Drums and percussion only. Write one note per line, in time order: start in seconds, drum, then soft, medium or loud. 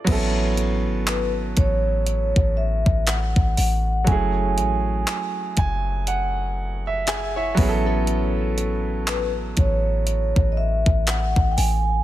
0.07 kick loud
0.07 closed hi-hat medium
0.07 crash loud
0.57 closed hi-hat medium
1.07 clap loud
1.07 closed hi-hat medium
1.57 kick medium
1.57 closed hi-hat medium
2.07 closed hi-hat medium
2.36 kick medium
2.86 kick medium
3.07 clap loud
3.07 closed hi-hat medium
3.36 kick medium
3.57 open hi-hat medium
4.07 kick loud
4.07 closed hi-hat medium
4.58 closed hi-hat medium
5.07 clap loud
5.07 closed hi-hat medium
5.57 kick loud
5.57 closed hi-hat medium
6.07 closed hi-hat medium
7.07 clap loud
7.07 closed hi-hat medium
7.57 kick loud
7.57 open hi-hat medium
8.07 closed hi-hat medium
8.58 closed hi-hat medium
9.07 clap loud
9.07 closed hi-hat medium
9.57 kick medium
9.57 closed hi-hat medium
10.07 closed hi-hat medium
10.36 kick medium
10.86 kick medium
11.07 clap loud
11.07 closed hi-hat medium
11.36 kick medium
11.58 open hi-hat medium